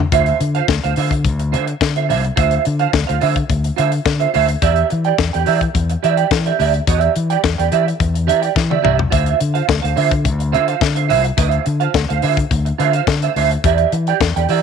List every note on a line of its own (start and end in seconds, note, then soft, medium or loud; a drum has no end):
0.12 0.32 D2 loud
0.12 0.38 F4 medium
0.12 0.38 C5 medium
0.12 0.39 E5 medium
0.12 kick loud
0.12 closed hi-hat medium
0.26 closed hi-hat soft
0.40 0.60 D3 loud
0.40 muted clean electric guitar stroke soft
0.40 closed hi-hat medium
0.55 0.65 F4 medium
0.55 0.65 C5 medium
0.55 0.64 F5 medium
0.55 closed hi-hat soft
0.68 0.79 D2 loud
0.68 kick loud
0.68 snare loud
0.84 0.93 D2 medium
0.84 0.93 F4 medium
0.84 0.93 C5 medium
0.84 0.93 F5 medium
0.84 closed hi-hat medium
0.96 1.26 D3 medium
0.96 1.10 F4 medium
0.96 1.10 C5 medium
0.96 1.11 E5 medium
0.96 open hi-hat medium
1.11 muted clean electric guitar stroke soft
1.11 kick medium
1.11 closed hi-hat soft
1.25 1.55 D2 loud
1.25 kick medium
1.25 closed hi-hat medium
1.39 muted clean electric guitar stroke soft
1.39 closed hi-hat soft
1.52 1.73 D3 medium
1.52 1.66 F4 medium
1.52 1.66 C5 medium
1.52 1.66 E5 medium
1.52 closed hi-hat medium
1.68 muted clean electric guitar stroke soft
1.68 closed hi-hat soft
1.81 2.11 D3 medium
1.81 muted clean electric guitar stroke soft
1.81 kick loud
1.81 snare loud
1.96 2.06 F4 soft
1.96 2.05 C5 soft
1.96 2.05 E5 medium
1.96 closed hi-hat soft
2.09 2.29 C2 medium
2.09 2.22 F4 medium
2.09 2.23 C5 medium
2.09 2.23 E5 loud
2.09 open hi-hat medium
2.24 muted clean electric guitar stroke soft
2.24 closed hi-hat medium
2.36 2.57 D2 loud
2.36 2.62 F4 medium
2.36 2.63 C5 medium
2.36 2.63 E5 medium
2.36 kick loud
2.36 closed hi-hat medium
2.51 closed hi-hat soft
2.65 2.86 D3 loud
2.65 muted clean electric guitar stroke soft
2.65 closed hi-hat medium
2.79 2.90 F4 medium
2.79 2.89 C5 medium
2.79 2.89 F5 medium
2.79 closed hi-hat soft
2.93 3.04 D2 medium
2.93 muted clean electric guitar stroke soft
2.93 kick loud
2.93 snare loud
3.07 3.18 D2 medium
3.07 3.18 F4 soft
3.07 3.18 C5 medium
3.07 3.17 F5 medium
3.07 closed hi-hat medium
3.21 3.42 D3 loud
3.21 3.35 F4 medium
3.21 3.35 C5 medium
3.21 3.35 E5 medium
3.21 open hi-hat medium
3.36 muted clean electric guitar stroke soft
3.36 kick medium
3.36 closed hi-hat soft
3.49 3.69 D2 loud
3.49 muted clean electric guitar stroke soft
3.49 kick medium
3.49 closed hi-hat medium
3.64 muted clean electric guitar stroke soft
3.64 closed hi-hat medium
3.76 3.98 D3 medium
3.76 3.91 F4 medium
3.76 3.91 C5 medium
3.76 3.91 E5 medium
3.76 closed hi-hat medium
3.92 muted clean electric guitar stroke soft
3.92 closed hi-hat soft
4.05 4.25 D3 medium
4.05 muted clean electric guitar stroke soft
4.05 kick loud
4.05 snare loud
4.20 4.30 F4 soft
4.20 4.30 C5 medium
4.20 4.30 E5 medium
4.20 closed hi-hat soft
4.34 4.55 D2 medium
4.34 4.47 F4 medium
4.34 4.48 C5 loud
4.34 4.47 E5 medium
4.34 open hi-hat medium
4.48 muted clean electric guitar stroke soft
4.48 closed hi-hat medium
4.62 4.82 E2 loud
4.62 4.88 G4 medium
4.62 4.88 D5 medium
4.62 4.88 E5 medium
4.62 kick loud
4.62 closed hi-hat medium
4.76 closed hi-hat soft
4.90 5.11 E3 medium
4.90 muted clean electric guitar stroke soft
4.90 closed hi-hat medium
5.04 5.15 G4 soft
5.04 5.15 D5 medium
5.04 5.14 G5 medium
5.04 closed hi-hat soft
5.18 5.29 E2 loud
5.18 muted clean electric guitar stroke soft
5.18 kick loud
5.18 snare loud
5.33 5.44 E2 medium
5.33 5.43 G4 medium
5.33 5.43 D5 medium
5.33 5.43 G5 medium
5.33 closed hi-hat soft
5.46 5.67 E3 loud
5.46 5.60 G4 medium
5.46 5.60 D5 medium
5.46 5.60 E5 medium
5.46 open hi-hat medium
5.61 muted clean electric guitar stroke soft
5.61 kick medium
5.61 closed hi-hat soft
5.74 5.95 E2 loud
5.74 muted clean electric guitar stroke soft
5.74 kick medium
5.74 closed hi-hat medium
5.90 muted clean electric guitar stroke soft
5.90 closed hi-hat soft
6.03 6.23 E3 loud
6.03 6.16 G4 medium
6.03 6.17 D5 medium
6.03 6.17 E5 medium
6.03 closed hi-hat medium
6.17 6.28 G4 medium
6.17 6.27 D5 medium
6.17 6.27 G5 medium
6.17 closed hi-hat soft
6.31 6.51 E3 medium
6.31 muted clean electric guitar stroke soft
6.31 kick loud
6.31 snare loud
6.46 6.56 G4 soft
6.46 6.55 D5 medium
6.46 6.55 E5 medium
6.46 closed hi-hat soft
6.59 6.79 D2 medium
6.59 6.73 G4 medium
6.59 6.73 D5 medium
6.59 6.73 E5 medium
6.59 open hi-hat medium
6.74 muted clean electric guitar stroke medium
6.74 closed hi-hat medium
6.87 7.07 E2 loud
6.87 6.98 F#4 medium
6.87 6.99 C#5 medium
6.87 6.99 D#5 medium
6.87 kick loud
6.87 closed hi-hat medium
6.98 7.13 G4 medium
6.98 7.14 D5 medium
6.98 7.14 E5 medium
6.98 closed hi-hat soft
7.16 7.36 E3 medium
7.16 muted clean electric guitar stroke soft
7.16 closed hi-hat medium
7.30 7.40 G4 soft
7.30 7.40 D5 medium
7.30 7.40 G5 medium
7.30 closed hi-hat soft
7.43 7.54 E2 medium
7.43 muted clean electric guitar stroke soft
7.43 kick loud
7.43 snare loud
7.58 7.68 E2 medium
7.58 7.68 G4 soft
7.58 7.68 D5 medium
7.58 7.68 G5 medium
7.58 closed hi-hat medium
7.72 7.92 E3 loud
7.72 7.85 G4 medium
7.72 7.85 D5 medium
7.72 7.85 E5 medium
7.72 closed hi-hat medium
7.87 muted clean electric guitar stroke soft
7.87 closed hi-hat soft
8.00 8.30 E2 loud
8.00 muted clean electric guitar stroke soft
8.00 kick loud
8.00 closed hi-hat medium
8.14 muted clean electric guitar stroke soft
8.14 closed hi-hat medium
8.27 8.48 E3 medium
8.27 8.41 G4 medium
8.27 8.41 D5 medium
8.27 8.41 E5 medium
8.27 closed hi-hat medium
8.42 8.52 G4 soft
8.42 8.52 D5 medium
8.42 8.52 G5 medium
8.42 closed hi-hat soft
8.55 8.76 E3 loud
8.55 muted clean electric guitar stroke soft
8.55 kick loud
8.55 snare medium
8.70 8.81 G4 soft
8.70 8.80 D5 medium
8.70 8.80 E5 soft
8.70 high tom medium
8.82 9.04 C2 medium
8.82 8.97 G4 medium
8.82 8.98 D5 medium
8.82 8.96 E5 medium
8.82 mid tom medium
8.98 muted clean electric guitar stroke soft
8.98 floor tom loud
9.10 9.32 D2 loud
9.10 9.38 F4 medium
9.10 9.38 C5 medium
9.10 9.38 E5 medium
9.10 kick loud
9.10 closed hi-hat medium
9.26 closed hi-hat soft
9.40 9.61 D3 medium
9.40 muted clean electric guitar stroke soft
9.40 closed hi-hat medium
9.54 9.65 F4 soft
9.54 9.65 C5 medium
9.54 9.64 F5 medium
9.54 closed hi-hat soft
9.68 9.80 D2 medium
9.68 muted clean electric guitar stroke soft
9.68 kick loud
9.68 snare loud
9.82 9.93 D2 medium
9.82 9.93 F4 soft
9.82 9.93 C5 medium
9.82 9.93 F5 medium
9.82 closed hi-hat medium
9.96 10.27 D3 loud
9.96 10.10 F4 medium
9.96 10.10 C5 medium
9.96 10.11 E5 medium
9.96 open hi-hat medium
10.11 muted clean electric guitar stroke soft
10.11 kick medium
10.11 closed hi-hat soft
10.24 10.55 D2 loud
10.24 muted clean electric guitar stroke soft
10.24 kick medium
10.24 closed hi-hat medium
10.39 muted clean electric guitar stroke soft
10.39 closed hi-hat soft
10.52 10.73 D3 medium
10.52 10.66 F4 medium
10.52 10.67 C5 medium
10.52 10.67 E5 loud
10.52 closed hi-hat medium
10.68 10.78 F4 soft
10.68 10.78 C5 medium
10.68 10.78 F5 medium
10.68 closed hi-hat soft
10.81 11.12 D3 medium
10.81 muted clean electric guitar stroke soft
10.81 kick loud
10.81 snare medium
10.95 11.06 F4 soft
10.95 11.06 C5 medium
10.95 11.05 E5 medium
10.95 closed hi-hat soft
11.09 11.30 C2 medium
11.09 11.23 F4 medium
11.09 11.23 C5 loud
11.09 11.23 E5 loud
11.09 open hi-hat medium
11.24 muted clean electric guitar stroke medium
11.24 closed hi-hat medium
11.37 11.58 D2 loud
11.37 11.48 E4 medium
11.37 11.49 B4 medium
11.37 11.49 D#5 medium
11.37 kick loud
11.37 closed hi-hat medium
11.48 11.64 F4 medium
11.48 11.64 C5 medium
11.48 11.64 E5 medium
11.48 closed hi-hat soft
11.65 11.86 D3 loud
11.65 muted clean electric guitar stroke soft
11.65 closed hi-hat medium
11.80 11.91 F4 medium
11.80 11.91 C5 medium
11.80 11.90 F5 medium
11.80 closed hi-hat soft
11.94 12.05 D2 medium
11.94 muted clean electric guitar stroke soft
11.94 kick loud
11.94 snare loud
12.09 12.19 D2 medium
12.09 12.19 F4 medium
12.09 12.19 C5 medium
12.09 12.19 F5 medium
12.09 closed hi-hat medium
12.22 12.43 D3 loud
12.22 12.36 F4 medium
12.22 12.36 C5 medium
12.22 12.36 E5 medium
12.22 open hi-hat medium
12.37 muted clean electric guitar stroke soft
12.37 kick medium
12.37 closed hi-hat soft
12.51 12.71 D2 loud
12.51 muted clean electric guitar stroke soft
12.51 kick loud
12.51 closed hi-hat medium
12.65 muted clean electric guitar stroke medium
12.65 closed hi-hat soft
12.78 12.99 D3 medium
12.78 12.92 F4 loud
12.78 12.93 C5 medium
12.78 12.93 E5 medium
12.78 closed hi-hat medium
12.93 13.04 F4 soft
12.93 13.04 C5 medium
12.93 13.03 F5 medium
12.93 closed hi-hat medium
13.07 13.27 D3 medium
13.07 muted clean electric guitar stroke soft
13.07 kick loud
13.07 snare loud
13.22 13.33 F4 soft
13.22 13.32 C5 medium
13.22 13.32 E5 medium
13.22 closed hi-hat soft
13.36 13.56 D2 medium
13.36 13.50 F4 medium
13.36 13.50 C5 medium
13.36 13.50 E5 medium
13.36 open hi-hat medium
13.51 muted clean electric guitar stroke soft
13.51 closed hi-hat medium
13.64 13.84 E2 loud
13.64 13.90 G4 medium
13.64 13.91 D5 medium
13.64 13.91 E5 medium
13.64 kick loud
13.64 closed hi-hat medium
13.78 closed hi-hat soft
13.92 14.12 E3 loud
13.92 muted clean electric guitar stroke soft
13.92 closed hi-hat medium
14.07 14.17 G4 medium
14.07 14.17 D5 medium
14.07 14.17 G5 medium
14.07 closed hi-hat soft
14.21 14.31 E2 medium
14.21 muted clean electric guitar stroke soft
14.21 kick loud
14.21 snare loud
14.36 14.45 E2 loud
14.36 14.46 G4 medium
14.36 14.46 D5 medium
14.36 14.45 G5 medium
14.36 closed hi-hat medium
14.49 14.62 E3 loud
14.49 14.62 G4 medium
14.49 14.62 D5 medium
14.49 14.62 E5 loud
14.49 open hi-hat medium